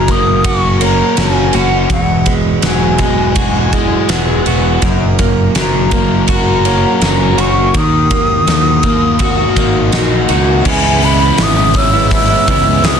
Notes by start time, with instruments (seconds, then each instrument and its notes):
Already playing: fingered electric bass F#1, overdriven electric guitar F#2, clean electric guitar F#3, flute A#5
0.08 twelve-string acoustic guitar A#3, clean electric guitar A#3, flute D#6, kick, ride
0.44 twelve-string acoustic guitar F#4, clean electric guitar F#4, flute C#6, kick, ride
0.81 clean electric guitar A#3, twelve-string acoustic guitar C#4, flute A#5, ride
1.17 fingered electric bass F#1, twelve-string acoustic guitar A#3, clean electric guitar C#4, overdriven electric guitar F#4, snare, ride
1.21 flute G#5
1.53 fingered electric bass F#1, twelve-string acoustic guitar A#3, overdriven electric guitar C#4, clean electric guitar F#4, flute F#5, ride
1.90 fingered electric bass E1, clean electric guitar E2, twelve-string acoustic guitar F#3, flute F#5, kick, ride
2.26 clean electric guitar G#3, twelve-string acoustic guitar B3, kick, ride
2.62 fingered electric bass E1, clean electric guitar E3, overdriven electric guitar F#3, twelve-string acoustic guitar F#3, flute G#5, snare, ride
2.98 clean electric guitar G#3, twelve-string acoustic guitar B3, kick, ride
3.35 clean electric guitar F#4, overdriven electric guitar G#4, twelve-string acoustic guitar G#4, kick, ride
3.73 clean electric guitar G#3, twelve-string acoustic guitar E4, kick, ride
4.09 fingered electric bass E1, twelve-string acoustic guitar F#3, clean electric guitar B3, overdriven electric guitar G#4, snare, ride
4.46 fingered electric bass E1, overdriven electric guitar B3, twelve-string acoustic guitar B3, clean electric guitar F#4, ride
4.82 fingered electric bass F#1, clean electric guitar F#2, twelve-string acoustic guitar A#3, kick, ride
5.19 twelve-string acoustic guitar A#3, clean electric guitar A#3, kick, ride
5.55 fingered electric bass F#1, clean electric guitar F#3, twelve-string acoustic guitar A#3, flute A#5, snare, ride
5.91 twelve-string acoustic guitar A#3, clean electric guitar A#3, kick, ride
6.28 clean electric guitar F#4, twelve-string acoustic guitar F#4, kick, ride
6.33 flute A#5
6.65 clean electric guitar A#3, twelve-string acoustic guitar C#4, ride
7.01 fingered electric bass F#1, twelve-string acoustic guitar A#3, clean electric guitar C#4, overdriven electric guitar F#4, snare, ride
7.38 fingered electric bass F#1, twelve-string acoustic guitar A#3, overdriven electric guitar C#4, clean electric guitar F#4, flute C#6, ride
7.74 fingered electric bass D#2, clean electric guitar D#3, twelve-string acoustic guitar F#3, flute D#6, kick, ride
8.11 twelve-string acoustic guitar A#3, clean electric guitar A#3, kick, ride
8.47 fingered electric bass D#2, clean electric guitar D#3, twelve-string acoustic guitar F#3, snare, ride
8.83 twelve-string acoustic guitar A#3, clean electric guitar A#3, kick, ride
9.19 twelve-string acoustic guitar F#4, clean electric guitar F#4, kick, ride
9.56 fingered electric bass G#1, clean electric guitar A#3, twelve-string acoustic guitar D#4, kick, ride
9.92 fingered electric bass A#1, twelve-string acoustic guitar F#3, clean electric guitar D#4, overdriven electric guitar F#4, snare, ride
10.29 fingered electric bass C#2, twelve-string acoustic guitar A#3, overdriven electric guitar D#4, clean electric guitar F#4, ride
10.65 fingered electric bass C#2, clean electric guitar C#3 E3 G#3 B3 E4, twelve-string acoustic guitar E3, overdriven electric guitar C#4, kick, crash
10.70 flute G#5
11.02 clean electric guitar E3 G#3 B3 E4, overdriven electric guitar C#4, flute B5, open hi-hat
11.19 overdriven electric guitar G#3 C#4 E4
11.38 fingered electric bass G#1, clean electric guitar C#3 E3 G#3 B3 E4, twelve-string acoustic guitar B3, overdriven electric guitar C#4, snare, open hi-hat
11.43 flute D#6
11.57 clean electric guitar G#3 B3 E4
11.74 overdriven electric guitar E3 G#3 C#4 E4, twelve-string acoustic guitar C#4, muted clean electric guitar stroke, kick, open hi-hat
11.78 flute E6
11.93 clean electric guitar G#3 B3 E4, overdriven electric guitar C#4
12.11 twelve-string acoustic guitar E3, flute E6, kick, open hi-hat
12.30 clean electric guitar G#3 B3 E4
12.48 fingered electric bass C#2, clean electric guitar E3 G#3 B3 E4, twelve-string acoustic guitar B3, overdriven electric guitar C#4, kick, open hi-hat
12.64 overdriven electric guitar G#3 C#4 E4
12.83 fingered electric bass C#2, clean electric guitar C#3 E3 G#3 B3 E4, twelve-string acoustic guitar C#4, overdriven electric guitar C#4, flute D#6, snare, open hi-hat